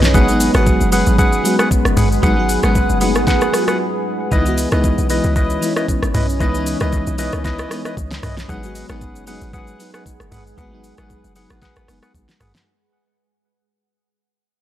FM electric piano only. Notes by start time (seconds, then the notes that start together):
Already playing: E3 G#3 B3 D#4 E4 F#4 G#4 B4
0.03 C#5
0.13 F#3 G#3 B3 D#4
0.28 F#3 G#3 B3 D#4
0.54 F#3 G#3 B3 F#4
0.92 F#3 G#3 B3 C#4
1.44 F#3 G#3 B3 F#4
2.22 F#3 G#3 B3 D#4
2.36 F#3 G#3 B3 F#4
2.62 F#3 G#3 B3 C#4
3.00 F#3 G#3 A3 D#4
3.09 B3
3.52 F#3 G#3 B3 F4
3.62 F#4
4.31 E3 G#3 B3 D#4
4.45 E3 G#3 B3 F#4
4.71 E3 G#3 B3 D#4
5.09 E3 G#3 B3 E4
5.61 E3 G#3 B3 E4
6.39 E3 G#3 B3 D#4
6.54 E3 G#3 B3 D#4
6.80 E3 G#3 B3 D#4
7.18 E3 G#3 B3 D#4
7.70 E3 G#3 B3 D#4
8.48 F#3 G#3 B3 D#4
8.62 F#3 G#3 B3 F#4
8.88 F#3 G#3 B3 D#4
9.26 F#3 G#3 B3 D#4
9.78 F#3 G#3 B3 D#4
10.57 F#3 G#3 B3 F#4
10.71 F#3 G#3 B3 D#4
10.97 F#3 G#3 B3 D#4
11.35 F#3 G#3 B3 D#4
11.87 F#3 G#3 B3 D#4